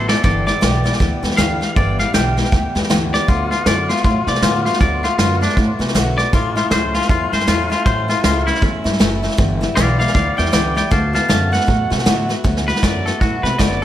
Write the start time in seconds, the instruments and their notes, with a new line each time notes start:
Already playing: upright bass A1
0.08 steel-string acoustic guitar A3 B3 F#4, clean electric guitar A4 D5, snare
0.23 upright bass G1, steel-string acoustic guitar G2 D3 E3 G3 B3 G4, clean electric guitar A4 D5, kick, snare
0.46 steel-string acoustic guitar E3 G3 B3 G4, clean electric guitar D5, snare
0.61 upright bass B1, steel-string acoustic guitar G2 D3 E3 G3 B3 G4, snare, hi-hat pedal
0.84 steel-string acoustic guitar E3 G3 B3 G4, snare
0.93 snare
0.99 upright bass D2, steel-string acoustic guitar E3 G3 B3 G4, kick, snare
1.23 upright bass E2, steel-string acoustic guitar E3 G3 B3 G4, snare
1.31 snare
1.37 upright bass D2, steel-string acoustic guitar G2 D3 E3 G3 B3 G4, clean electric guitar F5, snare, hi-hat pedal
1.61 steel-string acoustic guitar E3 G3 B3 G4, snare
1.76 upright bass G1, steel-string acoustic guitar G2 D3 E3 G3 B3 G4, clean electric guitar D5, kick, snare
1.99 steel-string acoustic guitar E3 G3 B3 G4, clean electric guitar F5, snare
2.14 upright bass B1, steel-string acoustic guitar G2 D3 E3 G3 B3 G4, clean electric guitar G5, snare, hi-hat pedal
2.37 steel-string acoustic guitar E3 G3 B3 G4, snare
2.45 snare
2.52 upright bass D2, steel-string acoustic guitar E3 G3 B3 G4, kick, snare
2.75 upright bass E2, steel-string acoustic guitar E3 G3 B3 G4, snare
2.83 snare
2.90 upright bass D2, steel-string acoustic guitar G2 D3 E3 G3 B3 G4, snare, hi-hat pedal
3.13 steel-string acoustic guitar E3 G3 B3 G4, clean electric guitar D5, snare
3.28 upright bass D2, steel-string acoustic guitar D3 F#3 A3 B3 F#4, clean electric guitar F4, kick, snare
3.51 steel-string acoustic guitar A3 B3 F#4, clean electric guitar F4, snare
3.66 upright bass F#2, steel-string acoustic guitar D3 F#3 A3 B3 F#4, clean electric guitar D5, snare, hi-hat pedal
3.89 steel-string acoustic guitar A3 B3 F#4, clean electric guitar F4, snare
3.97 snare
4.04 upright bass A2, steel-string acoustic guitar F#3 A3 B3 F#4, clean electric guitar F4, kick, snare
4.27 upright bass C3, steel-string acoustic guitar A3 B3 F#4, clean electric guitar D5, snare
4.35 snare
4.42 upright bass A2, steel-string acoustic guitar D3 F#3 A3 B3 F#4, clean electric guitar F4, snare, hi-hat pedal
4.66 steel-string acoustic guitar A3 B3 F#4, clean electric guitar F4, snare
4.73 snare
4.81 upright bass D2, steel-string acoustic guitar D3 F#3 A3 B3 F#4, clean electric guitar D5, kick, snare
5.03 steel-string acoustic guitar A3 B3 F#4, clean electric guitar F4, snare
5.18 upright bass F#2, steel-string acoustic guitar D3 F#3 A3 B3 F#4, clean electric guitar F4, snare, hi-hat pedal
5.41 steel-string acoustic guitar A3 B3 F#4, clean electric guitar D4, snare
5.49 snare
5.57 upright bass A2, steel-string acoustic guitar F#3 A3 B3 F#4, kick, snare
5.79 upright bass C3, steel-string acoustic guitar A3 B3 F#4, snare
5.88 snare
5.94 upright bass B1, steel-string acoustic guitar D3 F#3 A3 B3 F#4, snare, hi-hat pedal
6.18 steel-string acoustic guitar A3 B3 F#4, clean electric guitar D5, snare
6.33 upright bass A1, steel-string acoustic guitar A2 F#3 A3 C#4 E4, clean electric guitar F4, kick, snare
6.55 steel-string acoustic guitar A3 C#4 E4, clean electric guitar F4, snare
6.71 upright bass C#2, steel-string acoustic guitar A2 F#3 A3 C#4 E4, clean electric guitar C5, snare, hi-hat pedal
6.94 steel-string acoustic guitar A3 C#4 E4, clean electric guitar F4, snare
7.02 snare
7.09 upright bass E2, steel-string acoustic guitar F#3 A3 C#4 E4, clean electric guitar F4, kick, snare
7.32 upright bass G2, steel-string acoustic guitar A3 C#4 E4, clean electric guitar C5, snare
7.40 snare
7.47 upright bass E2, steel-string acoustic guitar A2 F#3 A3 C#4 E4, clean electric guitar F4, snare, hi-hat pedal
7.70 steel-string acoustic guitar A3 C#4 E4, clean electric guitar F4, snare
7.86 upright bass A1, steel-string acoustic guitar A2 F#3 A3 C#4 E4, clean electric guitar C5, kick, snare
8.08 steel-string acoustic guitar A3 C#4 E4, clean electric guitar F4, snare
8.24 upright bass C#2, steel-string acoustic guitar A2 F#3 A3 C#4 E4, clean electric guitar F4, snare, hi-hat pedal
8.47 steel-string acoustic guitar A3 C#4 E4, clean electric guitar E4, snare
8.55 snare
8.61 upright bass E2, steel-string acoustic guitar F#3 A3 C#4 E4, kick, snare
8.84 upright bass G2, steel-string acoustic guitar A3 C#4 E4, snare
8.93 snare
9.00 upright bass F#1, steel-string acoustic guitar A2 F#3 A3 C#4 E4, snare, hi-hat pedal
9.23 steel-string acoustic guitar A3 C#4 E4, snare
9.31 snare
9.37 upright bass G1, steel-string acoustic guitar G2 D3 E3 G3 B3 E4, kick, snare
9.61 steel-string acoustic guitar E3 G3 B3 E4, snare
9.75 upright bass B1, steel-string acoustic guitar G2 D3 E3 G3 B3, clean electric guitar D5 F5, snare, hi-hat pedal
9.99 steel-string acoustic guitar E3 G3 B3 E4, clean electric guitar D5 F5, snare
10.07 snare
10.14 upright bass D2, steel-string acoustic guitar E3 G3 B3 E4, clean electric guitar D5 F5, kick, snare
10.37 upright bass E2, steel-string acoustic guitar E3 G3 B3 E4, clean electric guitar D5 G5, snare
10.46 snare
10.52 upright bass C#2, steel-string acoustic guitar G2 D3 E3 G3 B3 E4, clean electric guitar D5 G5, snare, hi-hat pedal
10.75 steel-string acoustic guitar E3 G3 B3 E4, clean electric guitar D5 G5, snare
10.91 upright bass D2, steel-string acoustic guitar D3 F#3 A3 B3 F#4, clean electric guitar F5 A5, kick, snare
11.13 steel-string acoustic guitar A3 B3 F#4, clean electric guitar F5 A5, snare
11.28 upright bass F#2, steel-string acoustic guitar D3 F#3 A3 B3 F#4, clean electric guitar F5 A5, snare, hi-hat pedal
11.52 steel-string acoustic guitar A3 B3 F#4, clean electric guitar F#5, snare
11.61 snare
11.67 upright bass A2, steel-string acoustic guitar F#3 A3 B3 F#4, kick, snare
11.90 upright bass C3, steel-string acoustic guitar A3 B3 F#4, snare
11.99 snare
12.05 upright bass A2, steel-string acoustic guitar D3 F#3 A3 B3 F#4, snare, hi-hat pedal
12.29 steel-string acoustic guitar A3 B3 F#4, snare
12.44 upright bass D2, steel-string acoustic guitar D3 F#3 A3 B3 F#4, kick, snare
12.57 snare
12.67 steel-string acoustic guitar A3 B3 F#4, clean electric guitar B4, snare
12.76 snare
12.82 upright bass F#2, steel-string acoustic guitar D3 F#3 A3 B3 F#4, clean electric guitar D5, kick, snare, hi-hat pedal
13.06 steel-string acoustic guitar A3 B3 F#4, clean electric guitar A4, snare
13.21 upright bass A2, steel-string acoustic guitar F#3 A3 B3 F#4, clean electric guitar F#4, kick, snare
13.43 upright bass C3, steel-string acoustic guitar A3 B3 F#4, clean electric guitar B4, snare
13.58 upright bass F#1, steel-string acoustic guitar D3 F#3 A3 B3 F#4, clean electric guitar D5, kick, snare, hi-hat pedal